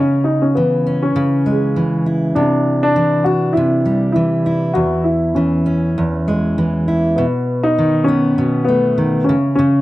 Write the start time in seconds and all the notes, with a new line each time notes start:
Already playing: C#3 C#4
0.24 D#4
0.42 C#4
0.55 E3 B3
0.86 C#4
1.02 C#4
1.16 C#3
1.46 G#3
1.76 E3
2.06 E4
2.35 C3 D4
2.83 D4
2.96 E3
3.24 D4 F#4
3.53 E4
3.57 C3
3.86 G3
4.12 E3 E4
4.46 E4
4.74 E2 F#4
5.04 E4
5.35 E3 C#4
5.66 C#4
5.98 E2
6.28 G#3
6.58 E3
6.88 E4
7.16 B2 B3
7.63 D#4
7.78 D#3
8.04 C#4
8.08 B3
8.38 B2
8.65 A3 B3
8.98 D#3
9.24 C#4
9.29 C#3
9.55 C#3 C#4